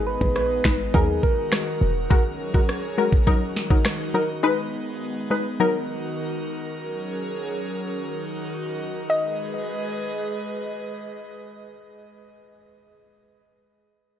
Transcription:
0.00 0.17 G#1 loud
0.00 0.31 G#3 loud
0.00 0.93 G#3 medium
0.00 0.93 B3 medium
0.00 0.31 D#4 medium
0.00 2.08 D#4 medium
0.00 0.31 B4 loud
0.07 0.35 B4 loud
0.21 0.61 A#1 medium
0.21 kick loud
0.36 0.96 B4 loud
0.36 cross-stick medium
0.36 closed hi-hat medium
0.64 0.91 G#1 medium
0.64 0.81 G#3 medium
0.64 0.81 D#4 medium
0.64 0.81 B4 medium
0.64 finger snap loud
0.64 kick loud
0.64 snare loud
0.94 1.21 D#2 loud
0.94 2.10 D#3 medium
0.94 2.01 F#3 medium
0.94 2.01 D#4 medium
0.94 2.10 F#4 medium
0.94 1.25 G#4 loud
0.94 4.40 A#4 medium
0.94 2.02 A#4 loud
0.94 kick loud
0.94 closed hi-hat medium
1.23 2.40 A#4 loud
1.23 kick loud
1.52 finger snap loud
1.52 cross-stick loud
1.52 snare loud
1.52 closed hi-hat medium
1.81 2.08 E1 loud
2.10 3.26 F#3 medium
2.10 2.51 G#3 loud
2.10 3.26 C#4 medium
2.10 2.51 F#4 medium
2.10 3.26 G#4 medium
2.10 2.51 A#4 loud
2.10 kick loud
2.10 closed hi-hat medium
2.54 2.70 G#3 medium
2.54 2.70 F#4 medium
2.54 2.71 A#4 medium
2.54 kick loud
2.69 cross-stick medium
2.69 closed hi-hat medium
2.98 3.14 G#3 medium
2.98 3.14 F#4 medium
2.98 3.14 A#4 medium
3.12 kick loud
3.27 4.42 D#3 medium
3.27 3.43 F#3 loud
3.27 5.58 D#4 medium
3.27 3.43 D#4 medium
3.27 4.42 F#4 medium
3.27 3.43 A#4 loud
3.27 kick loud
3.27 closed hi-hat medium
3.56 snare medium
3.70 3.87 F#3 medium
3.70 3.87 D#4 medium
3.70 3.87 A#4 medium
3.70 kick loud
3.85 finger snap loud
3.85 cross-stick loud
3.85 snare loud
3.85 closed hi-hat medium
4.14 4.30 F#3 medium
4.14 4.31 D#4 medium
4.14 4.31 A#4 medium
4.43 4.97 G#3 loud
4.43 5.59 G#3 medium
4.43 5.59 B3 medium
4.43 4.97 D#4 medium
4.43 4.97 B4 loud
5.30 5.47 G#3 medium
5.30 5.47 D#4 medium
5.30 5.47 B4 medium
5.60 6.75 D#3 medium
5.60 6.67 F#3 loud
5.60 6.75 D#4 medium
5.60 6.67 D#4 medium
5.60 6.75 F#4 medium
5.60 9.06 A#4 medium
5.60 6.67 A#4 loud
6.76 7.92 F#3 medium
6.76 7.92 C#4 medium
6.76 7.92 G#4 medium
7.93 9.08 D#3 medium
7.93 9.08 D#4 medium
7.93 9.08 F#4 medium
9.09 12.19 G#3 medium
9.09 12.19 G#4 medium
9.09 12.19 B4 medium
9.09 12.19 D#5 medium
9.09 10.80 D#5 medium

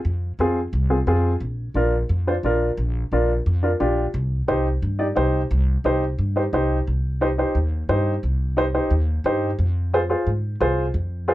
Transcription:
0.05 0.32 F2 loud
0.39 0.66 F2 medium
0.39 0.58 C4 medium
0.39 0.58 F4 medium
0.39 0.58 G#4 medium
0.73 1.00 C2 medium
0.90 0.96 C4 medium
0.90 0.96 F4 medium
0.90 0.97 G#4 medium
1.07 1.35 F2 medium
1.07 1.31 C4 medium
1.07 1.32 F4 medium
1.07 1.32 G#4 medium
1.40 1.68 A#1 medium
1.74 2.02 A#1 medium
1.74 1.94 D4 medium
1.74 1.94 F4 medium
1.74 1.94 A#4 medium
2.09 2.37 F2 medium
2.27 2.33 D4 medium
2.27 2.33 F4 medium
2.27 2.33 C5 medium
2.43 2.71 A#1 medium
2.43 2.68 D4 medium
2.43 2.68 F4 medium
2.43 2.69 A#4 medium
2.77 3.05 A#1 loud
3.12 3.39 A#1 medium
3.12 3.30 D4 medium
3.12 3.30 F4 medium
3.12 3.31 A#4 medium
3.46 3.73 F2 medium
3.63 3.69 D4 medium
3.63 3.70 F4 medium
3.63 3.69 A#4 medium
3.80 4.07 A#1 medium
3.80 4.04 D4 medium
3.80 4.04 F4 medium
3.80 4.04 G4 medium
4.14 4.41 C2 loud
4.48 4.76 C2 medium
4.48 4.66 D#4 medium
4.48 4.66 G4 medium
4.48 4.66 C5 medium
4.82 5.10 G2 medium
4.99 5.05 D#4 medium
4.99 5.05 G4 medium
4.99 5.05 D5 medium
5.16 5.44 C2 medium
5.16 5.40 D#4 medium
5.16 5.40 G4 medium
5.16 5.40 C5 medium
5.51 5.78 C2 medium
5.84 6.12 C2 medium
5.84 6.03 D#4 medium
5.84 6.03 G4 medium
5.84 6.03 C5 medium
6.19 6.46 G2 medium
6.36 6.42 D#4 medium
6.36 6.42 G4 medium
6.36 6.42 C5 medium
6.53 6.80 C2 medium
6.53 6.77 D#4 medium
6.53 6.77 G4 medium
6.53 6.77 C5 medium
6.87 7.42 C2 medium
7.21 7.27 D#4 medium
7.21 7.27 G4 medium
7.21 7.27 C5 medium
7.38 7.56 D#4 medium
7.38 7.56 G4 medium
7.38 7.56 C5 medium
7.55 7.82 D#2 medium
7.89 8.16 G2 medium
7.89 8.13 D#4 medium
7.89 8.13 G4 medium
7.89 8.13 C5 medium
8.23 8.77 C2 medium
8.57 8.63 D#4 medium
8.57 8.63 G4 medium
8.57 8.63 C5 medium
8.74 8.92 D#4 medium
8.74 8.92 G4 medium
8.74 8.92 C5 medium
8.91 9.18 D#2 medium
9.24 9.52 G2 medium
9.24 9.49 D#4 medium
9.24 9.49 G4 medium
9.24 9.49 C5 medium
9.59 10.13 F2 medium
9.94 9.99 F4 medium
9.94 9.99 G#4 medium
9.94 9.99 C5 medium
10.10 10.28 F4 medium
10.10 10.28 G#4 medium
10.10 10.28 C5 medium
10.27 10.54 G#2 medium
10.60 10.88 C2 medium
10.60 10.84 F4 medium
10.60 10.85 G#4 medium
10.60 10.85 C5 medium
10.94 11.34 F2 medium
11.28 11.34 F4 medium
11.28 11.34 G#4 medium
11.28 11.34 C5 medium

